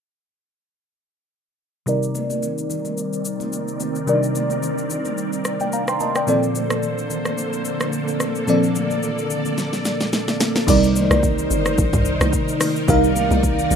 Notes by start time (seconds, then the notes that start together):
1.86 C3 D#3 G3 C4 D#4 A#4 D5, low conga, shaker
2.03 shaker
2.15 high conga, shaker
2.30 high conga, shaker
2.43 low conga, shaker
2.58 shaker
2.70 low conga, shaker
2.85 high conga, shaker
2.98 shaker
3.13 shaker
3.25 shaker
3.40 high conga, shaker
3.53 high conga, shaker
3.68 shaker
3.80 high conga, shaker
3.95 shaker
4.07 C3 G3 D4 A#4 D5, low conga, shaker
4.14 D#4
4.23 shaker
4.35 high conga, shaker
4.50 high conga, shaker
4.62 low conga, shaker
4.78 shaker
4.90 low conga, shaker
5.05 high conga, shaker
5.18 shaker
5.33 shaker
5.45 cross-stick, shaker
5.60 D5 G5, high conga, shaker
5.73 F5 A#5, high conga, shaker
5.88 G5 C6, cross-stick, shaker
6.00 D#5 A5, high conga, shaker
6.15 D5 G5, cross-stick, shaker
6.27 A#2 D3 F3 A#3 C4 A4 C5 D5, low conga, shaker
6.43 shaker
6.55 high conga, shaker
6.70 cross-stick, high conga, shaker
6.83 low conga, shaker
6.98 shaker
7.10 low conga, shaker
7.25 cross-stick, high conga, shaker
7.38 shaker
7.53 shaker
7.65 shaker
7.80 cross-stick, high conga, shaker
7.93 high conga, shaker
8.08 shaker
8.20 cross-stick, high conga, shaker
8.35 shaker
8.47 A#2 F3 C4 A4 D5, low conga, shaker
8.63 shaker
8.75 high conga, shaker
8.91 high conga, shaker
9.03 low conga, shaker
9.18 shaker
9.30 low conga, shaker
9.45 high conga, shaker
9.58 snare, shaker
9.73 snare, shaker
9.85 snare, shaker
10.01 snare, high conga, shaker
10.13 snare, high conga, shaker
10.28 snare, shaker
10.40 snare, high conga, shaker
10.56 snare, shaker
10.67 C2 C3 D#3 G3 D#4 A#4 C5 D5, kick, crash, low conga, shaker
10.84 shaker
10.96 high conga, shaker
11.11 C2, cross-stick, high conga, shaker
11.23 kick, low conga, shaker
11.39 shaker
11.50 G1, low conga, shaker
11.66 cross-stick, high conga, shaker
11.78 A#1, kick, shaker
11.93 C2, kick, mid tom, shaker
12.05 shaker
12.21 C2, cross-stick, high conga, shaker
12.33 kick, shaker
12.48 shaker
12.61 cross-stick, open hi-hat, high conga, shaker
12.76 shaker
12.88 C2 C3 G3 D#4 A#4 D5 F5, kick, low conga, shaker
13.04 shaker
13.16 high conga, shaker
13.31 C2, high conga, shaker
13.43 kick, low conga, shaker
13.59 shaker
13.70 A#1, low conga, shaker